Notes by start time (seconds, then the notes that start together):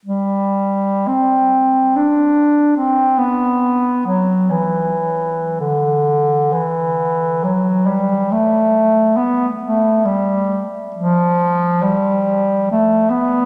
0.05 G3
1.08 C4
1.96 D4
2.76 C4
3.18 B3
4.06 F#3
4.51 E3
5.60 D3
6.53 E3
7.44 F#3
7.87 G3
8.32 A3
9.16 B3
9.62 A3
10.05 G3
10.96 F3
11.82 G3
12.71 A3
13.10 B3